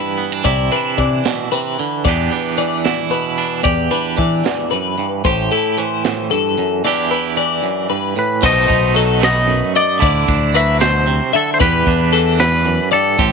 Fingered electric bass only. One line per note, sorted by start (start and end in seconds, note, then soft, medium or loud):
0.45 0.68 C2 medium
0.98 1.21 C3 medium
2.05 2.28 E2 medium
3.65 3.88 E2 medium
4.19 4.41 E3 medium
5.25 5.48 A1 medium
8.44 8.66 B1 loud
8.70 9.61 B1 medium
10.02 10.25 D2 loud
10.28 11.19 D2 medium
11.61 11.83 E2 loud
11.87 12.78 E2 medium
13.19 13.32 A1 loud